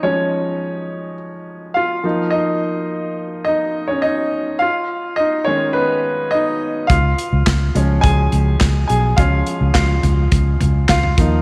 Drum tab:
HH |----------------|----------------|----------------|x-x-x-x-x-x-x-x-|
CP |----------------|----------------|----------------|----x-------x---|
SD |----------------|----------------|----------------|----o-------o---|
FT |----------------|----------------|----------------|----------------|
BD |----------------|----------------|----------------|o---o---o---o---|

HH |x-x-x-x-x-x-x-x-|
CP |----x-------x---|
SD |----o-------o---|
FT |------o---o--o--|
BD |o---o---o---o-o-|